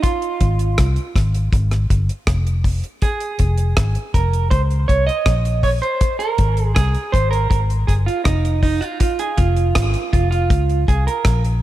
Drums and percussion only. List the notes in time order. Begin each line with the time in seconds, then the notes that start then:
0.03 kick, closed hi-hat
0.22 closed hi-hat
0.41 kick, closed hi-hat
0.59 closed hi-hat
0.78 kick, cross-stick, closed hi-hat
0.96 closed hi-hat
1.16 kick, cross-stick, closed hi-hat
1.34 closed hi-hat
1.53 kick, closed hi-hat
1.71 cross-stick, closed hi-hat
1.90 kick, closed hi-hat
2.09 closed hi-hat
2.27 kick, cross-stick, closed hi-hat
2.47 closed hi-hat
2.64 kick, open hi-hat
2.84 closed hi-hat
3.02 kick, closed hi-hat
3.20 closed hi-hat
3.39 kick, closed hi-hat
3.58 closed hi-hat
3.77 kick, cross-stick, closed hi-hat
3.95 closed hi-hat
4.14 kick, closed hi-hat
4.33 closed hi-hat
4.51 kick, closed hi-hat
4.71 closed hi-hat
4.89 kick, closed hi-hat
5.09 closed hi-hat
5.26 kick, cross-stick, closed hi-hat
5.45 closed hi-hat
5.63 kick, open hi-hat
5.83 closed hi-hat
6.01 kick, closed hi-hat
6.20 closed hi-hat
6.38 kick, closed hi-hat
6.57 closed hi-hat
6.76 kick, cross-stick, closed hi-hat
6.95 closed hi-hat
7.14 kick, closed hi-hat
7.33 closed hi-hat
7.51 kick, closed hi-hat
7.70 closed hi-hat
7.88 kick, closed hi-hat
8.08 closed hi-hat
8.25 kick, cross-stick, closed hi-hat
8.45 closed hi-hat
8.63 kick, open hi-hat
8.82 closed hi-hat
9.00 kick, closed hi-hat
9.19 closed hi-hat
9.38 kick, closed hi-hat
9.57 closed hi-hat
9.75 kick, cross-stick, closed hi-hat
9.94 closed hi-hat
10.13 kick, closed hi-hat
10.32 closed hi-hat
10.50 kick, closed hi-hat
10.69 closed hi-hat
10.88 kick, closed hi-hat
11.08 closed hi-hat
11.25 kick, cross-stick, closed hi-hat
11.45 closed hi-hat